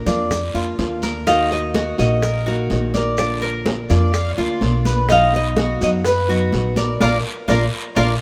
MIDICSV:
0, 0, Header, 1, 8, 480
1, 0, Start_track
1, 0, Tempo, 478851
1, 1267, Time_signature, 4, 2, 24, 8
1, 8233, End_track
2, 0, Start_track
2, 0, Title_t, "Nylon-string guitar"
2, 0, Program_c, 0, 24
2, 0, Note_on_c, 0, 70, 72
2, 265, Note_off_c, 0, 70, 0
2, 1273, Note_on_c, 0, 77, 111
2, 1517, Note_off_c, 0, 77, 0
2, 1526, Note_on_c, 0, 75, 95
2, 1986, Note_off_c, 0, 75, 0
2, 1998, Note_on_c, 0, 75, 90
2, 2485, Note_on_c, 0, 70, 86
2, 2487, Note_off_c, 0, 75, 0
2, 2963, Note_off_c, 0, 70, 0
2, 2976, Note_on_c, 0, 70, 83
2, 3185, Note_off_c, 0, 70, 0
2, 3197, Note_on_c, 0, 74, 107
2, 3439, Note_off_c, 0, 74, 0
2, 3440, Note_on_c, 0, 70, 79
2, 4113, Note_off_c, 0, 70, 0
2, 5132, Note_on_c, 0, 77, 114
2, 5366, Note_off_c, 0, 77, 0
2, 5372, Note_on_c, 0, 75, 106
2, 5837, Note_off_c, 0, 75, 0
2, 5849, Note_on_c, 0, 75, 83
2, 5911, Note_off_c, 0, 75, 0
2, 6097, Note_on_c, 0, 71, 98
2, 6784, Note_off_c, 0, 71, 0
2, 6788, Note_on_c, 0, 70, 79
2, 8233, Note_off_c, 0, 70, 0
2, 8233, End_track
3, 0, Start_track
3, 0, Title_t, "Violin section"
3, 0, Program_c, 1, 48
3, 3910, Note_on_c, 1, 74, 88
3, 4132, Note_off_c, 1, 74, 0
3, 4144, Note_on_c, 1, 77, 99
3, 4315, Note_off_c, 1, 77, 0
3, 4327, Note_on_c, 1, 73, 64
3, 4392, Note_off_c, 1, 73, 0
3, 4399, Note_on_c, 1, 74, 89
3, 4993, Note_off_c, 1, 74, 0
3, 7033, Note_on_c, 1, 77, 95
3, 7040, Note_on_c, 1, 70, 96
3, 7040, Note_on_c, 1, 74, 92
3, 7184, Note_off_c, 1, 77, 0
3, 7188, Note_off_c, 1, 70, 0
3, 7188, Note_off_c, 1, 74, 0
3, 7509, Note_on_c, 1, 74, 93
3, 7513, Note_on_c, 1, 70, 92
3, 7517, Note_on_c, 1, 77, 89
3, 7662, Note_off_c, 1, 74, 0
3, 7664, Note_off_c, 1, 70, 0
3, 7666, Note_off_c, 1, 77, 0
3, 7980, Note_on_c, 1, 74, 93
3, 7985, Note_on_c, 1, 70, 92
3, 7986, Note_on_c, 1, 77, 85
3, 8136, Note_off_c, 1, 74, 0
3, 8139, Note_off_c, 1, 70, 0
3, 8140, Note_off_c, 1, 77, 0
3, 8233, End_track
4, 0, Start_track
4, 0, Title_t, "Cuban tres"
4, 0, Program_c, 2, 25
4, 65, Note_on_c, 2, 74, 76
4, 531, Note_off_c, 2, 74, 0
4, 550, Note_on_c, 2, 65, 76
4, 1014, Note_off_c, 2, 65, 0
4, 1032, Note_on_c, 2, 70, 70
4, 1262, Note_off_c, 2, 70, 0
4, 1271, Note_on_c, 2, 63, 86
4, 1734, Note_off_c, 2, 63, 0
4, 1752, Note_on_c, 2, 66, 65
4, 2215, Note_off_c, 2, 66, 0
4, 2236, Note_on_c, 2, 70, 76
4, 2464, Note_off_c, 2, 70, 0
4, 2469, Note_on_c, 2, 66, 73
4, 2934, Note_off_c, 2, 66, 0
4, 2948, Note_on_c, 2, 74, 68
4, 3413, Note_off_c, 2, 74, 0
4, 3425, Note_on_c, 2, 70, 79
4, 3892, Note_off_c, 2, 70, 0
4, 3912, Note_on_c, 2, 74, 77
4, 4375, Note_off_c, 2, 74, 0
4, 4391, Note_on_c, 2, 65, 81
4, 4854, Note_off_c, 2, 65, 0
4, 4864, Note_on_c, 2, 71, 75
4, 5098, Note_off_c, 2, 71, 0
4, 5105, Note_on_c, 2, 63, 88
4, 5571, Note_off_c, 2, 63, 0
4, 5587, Note_on_c, 2, 66, 72
4, 6052, Note_off_c, 2, 66, 0
4, 6063, Note_on_c, 2, 71, 73
4, 6298, Note_off_c, 2, 71, 0
4, 6308, Note_on_c, 2, 66, 78
4, 6773, Note_off_c, 2, 66, 0
4, 6786, Note_on_c, 2, 74, 77
4, 7015, Note_off_c, 2, 74, 0
4, 7025, Note_on_c, 2, 65, 96
4, 7031, Note_on_c, 2, 70, 99
4, 7033, Note_on_c, 2, 74, 90
4, 7180, Note_off_c, 2, 65, 0
4, 7180, Note_off_c, 2, 74, 0
4, 7182, Note_off_c, 2, 70, 0
4, 7497, Note_on_c, 2, 65, 95
4, 7504, Note_on_c, 2, 70, 89
4, 7509, Note_on_c, 2, 74, 85
4, 7656, Note_off_c, 2, 65, 0
4, 7657, Note_off_c, 2, 70, 0
4, 7658, Note_off_c, 2, 74, 0
4, 7983, Note_on_c, 2, 65, 100
4, 7985, Note_on_c, 2, 70, 91
4, 7994, Note_on_c, 2, 74, 89
4, 8138, Note_off_c, 2, 70, 0
4, 8139, Note_off_c, 2, 65, 0
4, 8141, Note_off_c, 2, 74, 0
4, 8233, End_track
5, 0, Start_track
5, 0, Title_t, "Nylon-string guitar"
5, 0, Program_c, 3, 24
5, 67, Note_on_c, 3, 65, 71
5, 75, Note_on_c, 3, 62, 66
5, 80, Note_on_c, 3, 58, 50
5, 297, Note_off_c, 3, 65, 0
5, 301, Note_off_c, 3, 62, 0
5, 304, Note_off_c, 3, 58, 0
5, 544, Note_on_c, 3, 65, 65
5, 551, Note_on_c, 3, 62, 57
5, 557, Note_on_c, 3, 58, 55
5, 775, Note_off_c, 3, 58, 0
5, 776, Note_off_c, 3, 65, 0
5, 779, Note_off_c, 3, 62, 0
5, 780, Note_on_c, 3, 50, 45
5, 787, Note_on_c, 3, 58, 53
5, 792, Note_on_c, 3, 62, 48
5, 796, Note_on_c, 3, 65, 52
5, 1254, Note_off_c, 3, 50, 0
5, 1257, Note_off_c, 3, 58, 0
5, 1260, Note_off_c, 3, 62, 0
5, 1262, Note_off_c, 3, 65, 0
5, 1268, Note_on_c, 3, 51, 75
5, 1277, Note_on_c, 3, 58, 71
5, 1278, Note_on_c, 3, 63, 75
5, 1286, Note_on_c, 3, 66, 78
5, 1974, Note_off_c, 3, 66, 0
5, 1978, Note_off_c, 3, 51, 0
5, 1979, Note_off_c, 3, 63, 0
5, 1986, Note_on_c, 3, 66, 75
5, 1991, Note_on_c, 3, 63, 58
5, 1996, Note_off_c, 3, 58, 0
5, 2000, Note_on_c, 3, 58, 61
5, 2217, Note_off_c, 3, 66, 0
5, 2219, Note_off_c, 3, 58, 0
5, 2220, Note_off_c, 3, 63, 0
5, 2470, Note_on_c, 3, 66, 61
5, 2477, Note_on_c, 3, 63, 60
5, 2488, Note_on_c, 3, 58, 58
5, 2699, Note_off_c, 3, 66, 0
5, 2702, Note_off_c, 3, 63, 0
5, 2708, Note_off_c, 3, 58, 0
5, 2711, Note_on_c, 3, 51, 49
5, 2718, Note_on_c, 3, 58, 56
5, 2721, Note_on_c, 3, 63, 59
5, 2723, Note_on_c, 3, 66, 50
5, 3179, Note_off_c, 3, 51, 0
5, 3183, Note_off_c, 3, 58, 0
5, 3184, Note_off_c, 3, 63, 0
5, 3185, Note_off_c, 3, 66, 0
5, 3190, Note_on_c, 3, 50, 63
5, 3194, Note_on_c, 3, 58, 70
5, 3201, Note_on_c, 3, 62, 69
5, 3204, Note_on_c, 3, 65, 71
5, 3895, Note_off_c, 3, 65, 0
5, 3899, Note_off_c, 3, 50, 0
5, 3901, Note_off_c, 3, 58, 0
5, 3904, Note_off_c, 3, 62, 0
5, 3907, Note_on_c, 3, 65, 68
5, 3917, Note_on_c, 3, 62, 62
5, 3923, Note_on_c, 3, 58, 59
5, 4137, Note_off_c, 3, 58, 0
5, 4137, Note_off_c, 3, 65, 0
5, 4142, Note_off_c, 3, 62, 0
5, 4386, Note_on_c, 3, 65, 78
5, 4396, Note_on_c, 3, 62, 64
5, 4398, Note_on_c, 3, 58, 53
5, 4612, Note_off_c, 3, 58, 0
5, 4616, Note_off_c, 3, 65, 0
5, 4621, Note_off_c, 3, 62, 0
5, 4621, Note_on_c, 3, 50, 48
5, 4624, Note_on_c, 3, 58, 51
5, 4632, Note_on_c, 3, 62, 54
5, 4635, Note_on_c, 3, 65, 54
5, 5094, Note_off_c, 3, 50, 0
5, 5096, Note_off_c, 3, 58, 0
5, 5100, Note_off_c, 3, 62, 0
5, 5101, Note_off_c, 3, 65, 0
5, 5105, Note_on_c, 3, 47, 65
5, 5107, Note_on_c, 3, 54, 70
5, 5114, Note_on_c, 3, 59, 76
5, 5114, Note_on_c, 3, 63, 71
5, 5117, Note_on_c, 3, 66, 78
5, 5812, Note_off_c, 3, 66, 0
5, 5816, Note_off_c, 3, 47, 0
5, 5817, Note_off_c, 3, 54, 0
5, 5818, Note_off_c, 3, 63, 0
5, 5820, Note_off_c, 3, 59, 0
5, 5824, Note_on_c, 3, 66, 75
5, 5830, Note_on_c, 3, 63, 74
5, 5835, Note_on_c, 3, 59, 55
5, 5838, Note_on_c, 3, 54, 59
5, 6053, Note_off_c, 3, 54, 0
5, 6053, Note_off_c, 3, 59, 0
5, 6056, Note_off_c, 3, 66, 0
5, 6059, Note_off_c, 3, 63, 0
5, 6300, Note_on_c, 3, 66, 70
5, 6306, Note_on_c, 3, 63, 62
5, 6310, Note_on_c, 3, 59, 65
5, 6315, Note_on_c, 3, 54, 52
5, 6533, Note_off_c, 3, 54, 0
5, 6533, Note_off_c, 3, 66, 0
5, 6535, Note_off_c, 3, 59, 0
5, 6536, Note_off_c, 3, 63, 0
5, 6545, Note_on_c, 3, 54, 47
5, 6547, Note_on_c, 3, 59, 55
5, 6554, Note_on_c, 3, 63, 57
5, 6559, Note_on_c, 3, 66, 59
5, 7016, Note_off_c, 3, 54, 0
5, 7017, Note_off_c, 3, 59, 0
5, 7020, Note_off_c, 3, 63, 0
5, 7023, Note_off_c, 3, 66, 0
5, 7026, Note_on_c, 3, 58, 87
5, 7029, Note_on_c, 3, 62, 83
5, 7030, Note_on_c, 3, 65, 92
5, 7179, Note_off_c, 3, 65, 0
5, 7180, Note_off_c, 3, 62, 0
5, 7181, Note_off_c, 3, 58, 0
5, 7505, Note_on_c, 3, 58, 99
5, 7510, Note_on_c, 3, 62, 95
5, 7516, Note_on_c, 3, 65, 94
5, 7661, Note_off_c, 3, 62, 0
5, 7662, Note_off_c, 3, 58, 0
5, 7662, Note_off_c, 3, 65, 0
5, 7982, Note_on_c, 3, 58, 87
5, 7987, Note_on_c, 3, 62, 89
5, 7989, Note_on_c, 3, 65, 95
5, 8138, Note_off_c, 3, 58, 0
5, 8140, Note_off_c, 3, 62, 0
5, 8140, Note_off_c, 3, 65, 0
5, 8233, End_track
6, 0, Start_track
6, 0, Title_t, "Upright bass"
6, 0, Program_c, 4, 32
6, 62, Note_on_c, 4, 41, 90
6, 511, Note_off_c, 4, 41, 0
6, 545, Note_on_c, 4, 41, 66
6, 769, Note_off_c, 4, 41, 0
6, 789, Note_on_c, 4, 39, 84
6, 1924, Note_off_c, 4, 39, 0
6, 1992, Note_on_c, 4, 34, 95
6, 2669, Note_off_c, 4, 34, 0
6, 2714, Note_on_c, 4, 34, 85
6, 3846, Note_off_c, 4, 34, 0
6, 3911, Note_on_c, 4, 41, 96
6, 4355, Note_off_c, 4, 41, 0
6, 4391, Note_on_c, 4, 38, 69
6, 4612, Note_off_c, 4, 38, 0
6, 4628, Note_on_c, 4, 35, 90
6, 5763, Note_off_c, 4, 35, 0
6, 5831, Note_on_c, 4, 42, 95
6, 6508, Note_off_c, 4, 42, 0
6, 6546, Note_on_c, 4, 34, 87
6, 6992, Note_off_c, 4, 34, 0
6, 7026, Note_on_c, 4, 34, 98
6, 7205, Note_off_c, 4, 34, 0
6, 7503, Note_on_c, 4, 34, 93
6, 7683, Note_off_c, 4, 34, 0
6, 7986, Note_on_c, 4, 34, 92
6, 8164, Note_off_c, 4, 34, 0
6, 8233, End_track
7, 0, Start_track
7, 0, Title_t, "Muted nylon-string guitar strokes"
7, 313, Note_on_c, 9, 29, 54
7, 413, Note_off_c, 9, 29, 0
7, 2228, Note_on_c, 9, 29, 57
7, 2329, Note_off_c, 9, 29, 0
7, 4146, Note_on_c, 9, 29, 53
7, 4246, Note_off_c, 9, 29, 0
7, 6065, Note_on_c, 9, 29, 66
7, 6165, Note_off_c, 9, 29, 0
7, 8233, End_track
8, 0, Start_track
8, 0, Title_t, "Drums"
8, 65, Note_on_c, 9, 64, 77
8, 69, Note_on_c, 9, 60, 36
8, 70, Note_on_c, 9, 70, 73
8, 72, Note_on_c, 9, 73, 64
8, 165, Note_off_c, 9, 64, 0
8, 169, Note_off_c, 9, 60, 0
8, 170, Note_off_c, 9, 70, 0
8, 172, Note_off_c, 9, 73, 0
8, 308, Note_on_c, 9, 63, 33
8, 308, Note_on_c, 9, 64, 63
8, 308, Note_on_c, 9, 74, 69
8, 310, Note_on_c, 9, 60, 64
8, 314, Note_on_c, 9, 70, 86
8, 408, Note_off_c, 9, 63, 0
8, 408, Note_off_c, 9, 64, 0
8, 408, Note_off_c, 9, 74, 0
8, 411, Note_off_c, 9, 60, 0
8, 414, Note_off_c, 9, 70, 0
8, 550, Note_on_c, 9, 63, 33
8, 559, Note_on_c, 9, 70, 30
8, 650, Note_off_c, 9, 63, 0
8, 659, Note_off_c, 9, 70, 0
8, 790, Note_on_c, 9, 60, 34
8, 790, Note_on_c, 9, 61, 78
8, 790, Note_on_c, 9, 73, 65
8, 791, Note_on_c, 9, 63, 79
8, 795, Note_on_c, 9, 70, 26
8, 891, Note_off_c, 9, 60, 0
8, 891, Note_off_c, 9, 61, 0
8, 891, Note_off_c, 9, 63, 0
8, 891, Note_off_c, 9, 73, 0
8, 895, Note_off_c, 9, 70, 0
8, 1024, Note_on_c, 9, 73, 72
8, 1030, Note_on_c, 9, 70, 75
8, 1033, Note_on_c, 9, 63, 68
8, 1038, Note_on_c, 9, 60, 33
8, 1124, Note_off_c, 9, 73, 0
8, 1131, Note_off_c, 9, 70, 0
8, 1133, Note_off_c, 9, 63, 0
8, 1138, Note_off_c, 9, 60, 0
8, 1274, Note_on_c, 9, 74, 69
8, 1275, Note_on_c, 9, 70, 91
8, 1276, Note_on_c, 9, 60, 66
8, 1278, Note_on_c, 9, 63, 33
8, 1374, Note_off_c, 9, 74, 0
8, 1375, Note_off_c, 9, 70, 0
8, 1376, Note_off_c, 9, 60, 0
8, 1378, Note_off_c, 9, 63, 0
8, 1514, Note_on_c, 9, 63, 33
8, 1515, Note_on_c, 9, 60, 33
8, 1516, Note_on_c, 9, 70, 30
8, 1614, Note_off_c, 9, 63, 0
8, 1615, Note_off_c, 9, 60, 0
8, 1616, Note_off_c, 9, 70, 0
8, 1746, Note_on_c, 9, 73, 76
8, 1750, Note_on_c, 9, 63, 87
8, 1754, Note_on_c, 9, 60, 61
8, 1756, Note_on_c, 9, 70, 27
8, 1847, Note_off_c, 9, 73, 0
8, 1850, Note_off_c, 9, 63, 0
8, 1854, Note_off_c, 9, 60, 0
8, 1856, Note_off_c, 9, 70, 0
8, 1988, Note_on_c, 9, 73, 66
8, 1989, Note_on_c, 9, 63, 33
8, 1996, Note_on_c, 9, 60, 35
8, 1998, Note_on_c, 9, 70, 63
8, 2088, Note_off_c, 9, 73, 0
8, 2090, Note_off_c, 9, 63, 0
8, 2096, Note_off_c, 9, 60, 0
8, 2098, Note_off_c, 9, 70, 0
8, 2225, Note_on_c, 9, 63, 32
8, 2228, Note_on_c, 9, 74, 65
8, 2230, Note_on_c, 9, 60, 67
8, 2232, Note_on_c, 9, 70, 90
8, 2325, Note_off_c, 9, 63, 0
8, 2328, Note_off_c, 9, 74, 0
8, 2331, Note_off_c, 9, 60, 0
8, 2332, Note_off_c, 9, 70, 0
8, 2469, Note_on_c, 9, 63, 33
8, 2480, Note_on_c, 9, 70, 28
8, 2569, Note_off_c, 9, 63, 0
8, 2580, Note_off_c, 9, 70, 0
8, 2706, Note_on_c, 9, 73, 68
8, 2709, Note_on_c, 9, 63, 83
8, 2714, Note_on_c, 9, 60, 33
8, 2714, Note_on_c, 9, 61, 77
8, 2720, Note_on_c, 9, 70, 27
8, 2806, Note_off_c, 9, 73, 0
8, 2809, Note_off_c, 9, 63, 0
8, 2814, Note_off_c, 9, 60, 0
8, 2814, Note_off_c, 9, 61, 0
8, 2821, Note_off_c, 9, 70, 0
8, 2946, Note_on_c, 9, 73, 71
8, 2950, Note_on_c, 9, 63, 83
8, 2951, Note_on_c, 9, 60, 37
8, 2954, Note_on_c, 9, 70, 68
8, 3046, Note_off_c, 9, 73, 0
8, 3051, Note_off_c, 9, 60, 0
8, 3051, Note_off_c, 9, 63, 0
8, 3054, Note_off_c, 9, 70, 0
8, 3185, Note_on_c, 9, 70, 85
8, 3189, Note_on_c, 9, 60, 70
8, 3189, Note_on_c, 9, 63, 33
8, 3191, Note_on_c, 9, 74, 71
8, 3285, Note_off_c, 9, 70, 0
8, 3289, Note_off_c, 9, 63, 0
8, 3290, Note_off_c, 9, 60, 0
8, 3291, Note_off_c, 9, 74, 0
8, 3427, Note_on_c, 9, 70, 29
8, 3430, Note_on_c, 9, 63, 35
8, 3434, Note_on_c, 9, 60, 34
8, 3527, Note_off_c, 9, 70, 0
8, 3530, Note_off_c, 9, 63, 0
8, 3534, Note_off_c, 9, 60, 0
8, 3665, Note_on_c, 9, 70, 28
8, 3666, Note_on_c, 9, 63, 96
8, 3668, Note_on_c, 9, 73, 71
8, 3671, Note_on_c, 9, 60, 61
8, 3766, Note_off_c, 9, 63, 0
8, 3766, Note_off_c, 9, 70, 0
8, 3768, Note_off_c, 9, 73, 0
8, 3771, Note_off_c, 9, 60, 0
8, 3905, Note_on_c, 9, 70, 71
8, 3907, Note_on_c, 9, 73, 69
8, 3908, Note_on_c, 9, 60, 38
8, 3910, Note_on_c, 9, 64, 79
8, 4005, Note_off_c, 9, 70, 0
8, 4007, Note_off_c, 9, 73, 0
8, 4008, Note_off_c, 9, 60, 0
8, 4010, Note_off_c, 9, 64, 0
8, 4148, Note_on_c, 9, 60, 68
8, 4148, Note_on_c, 9, 70, 92
8, 4149, Note_on_c, 9, 63, 33
8, 4151, Note_on_c, 9, 74, 68
8, 4248, Note_off_c, 9, 60, 0
8, 4248, Note_off_c, 9, 70, 0
8, 4249, Note_off_c, 9, 63, 0
8, 4251, Note_off_c, 9, 74, 0
8, 4386, Note_on_c, 9, 63, 35
8, 4386, Note_on_c, 9, 70, 28
8, 4486, Note_off_c, 9, 63, 0
8, 4486, Note_off_c, 9, 70, 0
8, 4622, Note_on_c, 9, 63, 82
8, 4625, Note_on_c, 9, 70, 29
8, 4628, Note_on_c, 9, 73, 65
8, 4633, Note_on_c, 9, 60, 33
8, 4633, Note_on_c, 9, 61, 83
8, 4722, Note_off_c, 9, 63, 0
8, 4726, Note_off_c, 9, 70, 0
8, 4728, Note_off_c, 9, 73, 0
8, 4733, Note_off_c, 9, 60, 0
8, 4733, Note_off_c, 9, 61, 0
8, 4864, Note_on_c, 9, 63, 76
8, 4867, Note_on_c, 9, 73, 75
8, 4869, Note_on_c, 9, 60, 35
8, 4870, Note_on_c, 9, 70, 72
8, 4964, Note_off_c, 9, 63, 0
8, 4967, Note_off_c, 9, 73, 0
8, 4969, Note_off_c, 9, 60, 0
8, 4970, Note_off_c, 9, 70, 0
8, 5099, Note_on_c, 9, 60, 71
8, 5103, Note_on_c, 9, 63, 34
8, 5110, Note_on_c, 9, 70, 95
8, 5113, Note_on_c, 9, 74, 75
8, 5199, Note_off_c, 9, 60, 0
8, 5203, Note_off_c, 9, 63, 0
8, 5211, Note_off_c, 9, 70, 0
8, 5214, Note_off_c, 9, 74, 0
8, 5343, Note_on_c, 9, 60, 33
8, 5344, Note_on_c, 9, 63, 35
8, 5350, Note_on_c, 9, 70, 30
8, 5443, Note_off_c, 9, 60, 0
8, 5444, Note_off_c, 9, 63, 0
8, 5450, Note_off_c, 9, 70, 0
8, 5579, Note_on_c, 9, 63, 93
8, 5580, Note_on_c, 9, 60, 64
8, 5591, Note_on_c, 9, 73, 67
8, 5593, Note_on_c, 9, 70, 28
8, 5679, Note_off_c, 9, 63, 0
8, 5680, Note_off_c, 9, 60, 0
8, 5691, Note_off_c, 9, 73, 0
8, 5693, Note_off_c, 9, 70, 0
8, 5818, Note_on_c, 9, 63, 36
8, 5823, Note_on_c, 9, 60, 35
8, 5828, Note_on_c, 9, 70, 70
8, 5828, Note_on_c, 9, 73, 68
8, 5919, Note_off_c, 9, 63, 0
8, 5923, Note_off_c, 9, 60, 0
8, 5928, Note_off_c, 9, 70, 0
8, 5928, Note_off_c, 9, 73, 0
8, 6060, Note_on_c, 9, 60, 69
8, 6068, Note_on_c, 9, 63, 34
8, 6068, Note_on_c, 9, 74, 70
8, 6071, Note_on_c, 9, 70, 90
8, 6160, Note_off_c, 9, 60, 0
8, 6168, Note_off_c, 9, 63, 0
8, 6168, Note_off_c, 9, 74, 0
8, 6171, Note_off_c, 9, 70, 0
8, 6303, Note_on_c, 9, 63, 33
8, 6322, Note_on_c, 9, 70, 29
8, 6404, Note_off_c, 9, 63, 0
8, 6423, Note_off_c, 9, 70, 0
8, 6541, Note_on_c, 9, 63, 80
8, 6546, Note_on_c, 9, 73, 65
8, 6551, Note_on_c, 9, 60, 32
8, 6551, Note_on_c, 9, 61, 74
8, 6556, Note_on_c, 9, 70, 29
8, 6641, Note_off_c, 9, 63, 0
8, 6646, Note_off_c, 9, 73, 0
8, 6651, Note_off_c, 9, 60, 0
8, 6651, Note_off_c, 9, 61, 0
8, 6656, Note_off_c, 9, 70, 0
8, 6779, Note_on_c, 9, 63, 89
8, 6785, Note_on_c, 9, 70, 76
8, 6786, Note_on_c, 9, 60, 32
8, 6789, Note_on_c, 9, 73, 77
8, 6879, Note_off_c, 9, 63, 0
8, 6885, Note_off_c, 9, 70, 0
8, 6887, Note_off_c, 9, 60, 0
8, 6889, Note_off_c, 9, 73, 0
8, 7021, Note_on_c, 9, 60, 92
8, 7023, Note_on_c, 9, 63, 97
8, 7024, Note_on_c, 9, 74, 92
8, 7032, Note_on_c, 9, 70, 99
8, 7121, Note_off_c, 9, 60, 0
8, 7123, Note_off_c, 9, 63, 0
8, 7124, Note_off_c, 9, 74, 0
8, 7132, Note_off_c, 9, 70, 0
8, 7501, Note_on_c, 9, 63, 90
8, 7504, Note_on_c, 9, 74, 99
8, 7506, Note_on_c, 9, 60, 90
8, 7507, Note_on_c, 9, 70, 89
8, 7601, Note_off_c, 9, 63, 0
8, 7604, Note_off_c, 9, 74, 0
8, 7607, Note_off_c, 9, 60, 0
8, 7608, Note_off_c, 9, 70, 0
8, 7983, Note_on_c, 9, 60, 97
8, 7983, Note_on_c, 9, 63, 91
8, 7983, Note_on_c, 9, 70, 104
8, 7985, Note_on_c, 9, 74, 101
8, 8083, Note_off_c, 9, 70, 0
8, 8084, Note_off_c, 9, 60, 0
8, 8084, Note_off_c, 9, 63, 0
8, 8086, Note_off_c, 9, 74, 0
8, 8233, End_track
0, 0, End_of_file